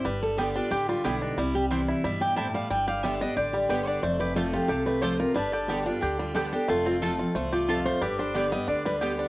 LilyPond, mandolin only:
\new Staff \with { instrumentName = "Mandolin" } { \time 4/4 \key g \mixolydian \tempo 4 = 181 r4 <b g' d'' g''>8 r4. <b g' d'' g''>8 r8 | r4 <c' e' c'' g''>8 r4. <c' e' c'' g''>8 r8 | r4 <b g' d'' g''>8 r4. <b g' d'' g''>8 r8 | r4 <a f' c'' a''>8 r4. <a f' c'' a''>8 r8 |
r4 <b g' d'' g''>8 r4. <b g' d'' g''>8 r8 | r4 <a f' c'' a''>8 r4. <a f' c'' a''>8 r8 | r4 <b g' d'' g''>8 r4. <b g' d'' g''>8 r8 | }